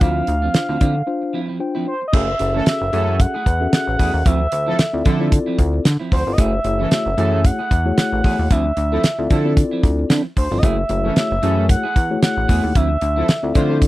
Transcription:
0.00 D2 F3 C4 D4 E4 F4 C5 F5, kick, closed hi-hat
0.27 D2, muted clean electric guitar stroke, closed hi-hat
0.42 F3 C4 F4
0.54 D4 F4 C5 F5, snare, closed hi-hat
0.69 D2 F3 C4 E4
0.80 D3 F3 C4 E4, kick, closed hi-hat
0.95 muted clean electric guitar stroke
1.07 D4 F4 C5 F5, muted clean electric guitar stroke
1.22 muted clean electric guitar stroke
1.33 F3 C4 E4
1.48 F3 C4 E4
1.60 D4 F4 C5 G5, muted clean electric guitar stroke
1.75 F3 C4 E4
1.87 C5, muted clean electric guitar stroke
2.02 muted clean electric guitar stroke
2.08 D#5
2.13 F#1 A3 C#4 E4 F#4 G#4 A4 E5, kick, crash
2.28 muted clean electric guitar stroke
2.39 F#1 C#4 F#4 G#4 A4 E5, muted clean electric guitar stroke, closed hi-hat
2.54 E3 A3 C#4 E4 A4
2.66 C#4 F#4 G#4 A4 E5, snare, closed hi-hat
2.81 F#1, muted clean electric guitar stroke
2.93 F#2 E3 A3 C#4 E4 F#4 G#4 A4 E5, closed hi-hat
3.08 A3 E4 G#4
3.20 F#5, kick, closed hi-hat
3.34 A3 E4 G#4
3.46 E2, muted clean electric guitar stroke, kick, closed hi-hat
3.60 C#4 F#4 G#4 A4 E5, muted clean electric guitar stroke
3.73 F#5, snare, closed hi-hat
3.87 A1, muted clean electric guitar stroke
3.99 E2 A3 E4 G#4, kick, open hi-hat
4.14 D#2, muted clean electric guitar stroke
4.25 D2 F3 C4 E4 E5, kick, closed hi-hat
4.40 muted clean electric guitar stroke
4.52 D2, muted clean electric guitar stroke, closed hi-hat
4.66 F3 C4 E4 A4
4.79 snare, closed hi-hat
4.93 D2 C4 E4 F4 A4 D5, muted clean electric guitar stroke
5.05 D3 F3 C4 E4 A4, kick, closed hi-hat
5.20 F3 C4 E4 F4 A4 D5
5.31 muted clean electric guitar stroke, kick, closed hi-hat
5.46 F3 C4 E4
5.58 D2, muted clean electric guitar stroke, kick, closed hi-hat
5.73 muted clean electric guitar stroke
5.85 D3, muted clean electric guitar stroke, snare, closed hi-hat
6.00 F3 C4 E4
6.11 D2 F3 C4 E4 C5, kick, open hi-hat
6.26 G1 C4 E4 F4 A4 D5, muted clean electric guitar stroke
6.33 D#5
6.38 F#1 A3 E4 F#4 G#4 C#5 E5, kick, closed hi-hat
6.53 muted clean electric guitar stroke
6.64 F#1 A3 E4 F#4 G#4 C#5, muted clean electric guitar stroke, closed hi-hat
6.79 E3 A3 C#4 E4 A4
6.91 A3 E4 F#4 G#4 C#5 E5, snare, closed hi-hat
7.06 F#1, muted clean electric guitar stroke
7.17 F#2 E3 A3 C#4 E4 F#4 G#4 A4 C#5, closed hi-hat
7.32 A3 E4 G#4
7.45 F#5, kick, closed hi-hat
7.59 A3 E4 G#4
7.71 E2, muted clean electric guitar stroke, kick, closed hi-hat
7.85 A3 E4 F#4 G#4 C#5, muted clean electric guitar stroke
7.98 F#5, snare, closed hi-hat
8.12 A1, muted clean electric guitar stroke
8.24 E2 A3 E4 G#4, kick, open hi-hat
8.39 D#2, muted clean electric guitar stroke
8.51 D2 F3 C4 E4 E5, kick, closed hi-hat
8.66 muted clean electric guitar stroke
8.77 D2, muted clean electric guitar stroke, closed hi-hat
8.92 F3 C4 E4 A4
9.04 snare, closed hi-hat
9.18 D2 C4 E4 F4 A4 D5, muted clean electric guitar stroke
9.30 D3 F3 C4 E4 A4, kick, closed hi-hat
9.45 F3 C4 E4 F4 A4 D5
9.57 muted clean electric guitar stroke, kick, closed hi-hat
9.71 F3 C4 E4
9.83 D2, muted clean electric guitar stroke, kick, closed hi-hat
9.98 muted clean electric guitar stroke
10.10 D3 F3 C4 E4, snare, closed hi-hat
10.24 muted clean electric guitar stroke
10.36 D2 C5, muted clean electric guitar stroke, kick, open hi-hat
10.51 G1 F3 C4 E4 F4 A4 D5
10.58 D#5
10.62 F#1 A3 E4 F#4 G#4 C#5 E5, kick, closed hi-hat
10.78 muted clean electric guitar stroke
10.89 F#1 A3 E4 F#4 G#4 C#5, muted clean electric guitar stroke, closed hi-hat
11.04 E3 A3 C#4 E4 A4
11.16 A3 E4 F#4 G#4 C#5 E5, snare, closed hi-hat
11.31 F#1, muted clean electric guitar stroke
11.42 F#2 E3 A3 C#4 E4 F#4 G#4 A4 C#5, closed hi-hat
11.57 A3 E4 G#4
11.69 F#5, muted clean electric guitar stroke, kick, closed hi-hat
11.84 A3 E4 G#4
11.95 E2, muted clean electric guitar stroke, kick, closed hi-hat
12.10 A3 E4 F#4 G#4 C#5, muted clean electric guitar stroke
12.22 F#5, snare, closed hi-hat
12.37 A1, muted clean electric guitar stroke
12.48 E2 A3 E4 G#4, kick, open hi-hat
12.63 D#2, muted clean electric guitar stroke
12.75 D2 F3 C4 E4 E5, kick, closed hi-hat
12.90 muted clean electric guitar stroke
13.01 D2, muted clean electric guitar stroke, closed hi-hat
13.16 F3 C4 E4 A4
13.28 muted clean electric guitar stroke, snare, closed hi-hat
13.43 D2 C4 E4 F4 A4 D5, muted clean electric guitar stroke
13.54 D3 F3 A3 C4 E4 F4 C5, kick, closed hi-hat
13.70 F3 C4 E4 F4 A4 D5
13.82 kick, closed hi-hat

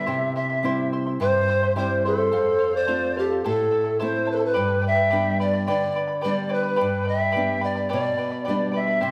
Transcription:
Already playing: E5
0.06 C3 E4 G4 C5 E5 C6
0.35 E4 C5 E5 C6
0.50 E4 E5 C6
0.63 G3 C4 E4 G4 C5 E5 C6
0.92 E4 C5 E5 C6
1.06 E4 E5 C6
1.20 G2 E4 G4 C5 E5 C6
1.49 E4 C5 E5 C6
1.63 E4 E5 C6
1.76 G3 C4 E4 G4 C5 E5 C6
2.05 E4 A4 C5 E5 C6
2.18 E4 E5 C6
2.32 F2 A4 C5 F5
2.58 A4 C5 F5
2.73 C5 D5 F5
2.87 A3 C4 F4 A4 C5 F5
3.16 G4 A4 C5 F5
3.30 C5 F5
3.44 A2 E4 A4 C5 E5 A5
3.71 E4 A4 E5 A5
3.84 E4 A4 A5
3.99 A3 C4 E4 A4 C5 E5 A5
4.25 E4 A4 E5 A5
4.31 B4
4.35 A4 C5
4.39 E4 A4 A5
4.45 B4
4.54 G2 G4 B4 D5 G5 B5
4.82 B4 D5 G5 B5
4.87 E5 G5
4.96 B4 D5 B5
5.10 G3 B3 D4 G4 B4 D5 G5 B5
5.39 B4 D5 G5 B5
5.53 B4 D5 B5
5.67 D3 G4 B4 D5 G5 B5
5.95 B4 D5 G5 B5
6.08 B4 D5 B5
6.21 G3 B3 G4 B4 D5 G5 B5
6.26 D4 D5
6.49 B4 D5 G5 B5
6.53 B4
6.63 B4 D5 B5
6.76 G4 B4 D5 G5 B5
6.81 G2
7.04 B4 D5 D#5 G5 B5
7.11 G5
7.18 B4 D5 E5 B5
7.32 G4 B4 D5 G5 B5
7.36 G3 B3 D4
7.60 B4 D5 G5 B5
7.65 D5
7.75 B4 D5 B5
7.89 G4 B4 D5 G5 B5
7.93 B2 D5
8.17 B4 D5 G5 B5
8.31 B4 D5 B5
8.44 G3 G4 B4 D5 G5 B5
8.49 B3 D4 D5
8.72 B4 D5 E5 G5 B5
8.77 E5
8.86 B4 D5 B5
9.01 C3 E4 G4 C5 E5 C6

